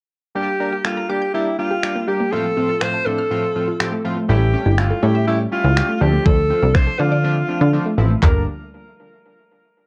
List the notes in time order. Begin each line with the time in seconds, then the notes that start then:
0.35 G3 A#3 D4 G4
0.60 G3 A#3 D4 A#4
0.72 G4
0.85 G3 A#3 D4 F4 A4, finger snap
0.97 A#5
1.09 G3 A#3 D4 G4 D6
1.22 G6
1.34 G3 A#3 D4 E4 G4
1.59 G3 A#3 D4 F4 G4
1.71 G4
1.83 G3 A#3 D4 G4, finger snap
1.95 A#3
2.08 G3 A#3 D4 G4
2.20 A#3
2.32 A2 F3 A3 C4 F4 A4
2.57 A2 F3 A3 C4 F4
2.69 F4
2.81 A2 F3 A3 C4 F4 C5, finger snap
2.94 A5
3.06 A2 F3 A3 C4 D4 A4 C6
3.18 F6
3.31 A2 F3 A3 C4 F4
3.55 A2 F3 A3 C4 F4
3.68 F4
3.80 A2 F3 A3 C4 G4, finger snap
3.92 A3
4.04 A2 F3 A3 C4 F4
4.17 A3
4.29 A1 G3 A3 C#4 E4 G4
4.53 G3 A3 C#4 G4
4.66 G1 E4
4.78 G3 A3 C#4 E4 F4, finger snap
4.90 A4
5.03 A2 G3 A3 C#4 E4 G4 C#5
5.15 E5
5.27 G3 A3 C#4 E4 G4
5.52 G3 A3 C#4 E4 F4
5.64 C#2 E4
5.76 G3 A3 C#4 G4, finger snap
5.89 A3
6.01 D2 F3 A3 C4 D4 G4
6.13 A3
6.26 D2 F3 A4, kick
6.50 F3 A3 C4 F4
6.63 C2 D4
6.75 F3 A3 C4 D4 C5, finger snap, kick
6.87 A4
6.99 D3 F3 A3 C4 D4 F4 C5
7.12 D5
7.24 F3 A3 C4 D4
7.48 F3 A3 C4 D4
7.61 D3 D4
7.73 F3 A3 C4 D4
7.86 A3
7.98 A1 F3 A3 C4 E4
8.10 A3
8.22 G1 D3 G3 A#3 D4 A#4, kick, clap, floor tom